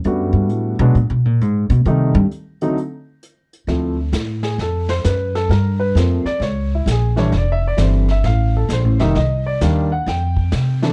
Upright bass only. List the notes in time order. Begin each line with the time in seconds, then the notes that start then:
0.05 F#2
0.33 G2
0.50 A2
0.79 B2
0.95 A#2
1.10 B2
1.25 A#2
1.41 G#2
1.70 B2
1.86 C3
2.15 G2
3.67 D2
4.13 A2
4.58 F2
5.05 F#2
5.49 G2
5.95 F2
6.25 muted upright bass stroke
6.40 C#2
6.86 A#1
7.32 F1
7.78 G1
8.24 A1
8.69 A#1
8.84 A1
9.00 F1
9.15 C2
9.61 D#2
10.06 F2
10.52 C3